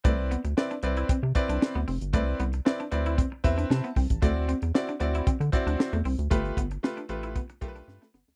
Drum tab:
HH |x-xx-xxxx-xx--ox|x-xx-xxxx-xx-xox|x-xx-xxxxxxx-xox|xxxx-xxxxxxx----|
SD |----o-------o---|----o-------o---|----o-------o---|----o-------oooo|
BD |o-------o-o-----|o-------o-o---oo|o-------o-o-----|o-o-----o-o-----|